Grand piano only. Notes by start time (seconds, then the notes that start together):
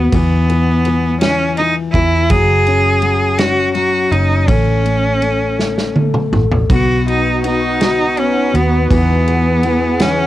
Already playing: B3 F#4
0.14 E3
0.50 E3
0.86 E3
1.23 E3
1.59 E3
1.95 E3
2.31 F#3
2.67 C#4
3.02 F#3
3.39 C#4
3.75 F#3
4.12 C#4
4.48 A3
4.83 A3
5.21 A3
5.58 A3
5.96 A3
6.33 A3
6.70 B3
7.07 F#4
7.45 B3
7.81 F#4
8.18 B3
8.55 F#4
8.91 E3
9.28 E3
9.65 E3
10.02 E3